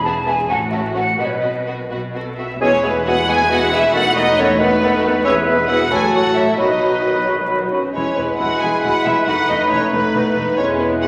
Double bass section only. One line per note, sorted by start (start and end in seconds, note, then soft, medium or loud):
0.00 0.42 E1 medium
0.50 1.11 A1 medium
1.19 1.82 B1 medium
1.90 2.53 B1 soft
2.61 5.22 E1 medium
5.26 5.90 E1 medium
5.92 6.58 A1 medium
6.58 7.72 B1 medium
7.95 8.03 E1 medium
8.18 8.26 E1 soft
8.40 8.48 E1 soft
8.62 8.70 E1 medium
8.85 8.93 E1 soft
9.06 9.14 E1 medium
9.27 9.35 E1 medium
9.50 9.58 E1 medium
9.71 9.79 E1 soft
9.93 10.01 E1 medium
10.14 10.22 E1 medium
10.37 10.45 E1 medium
10.58 11.08 E1 medium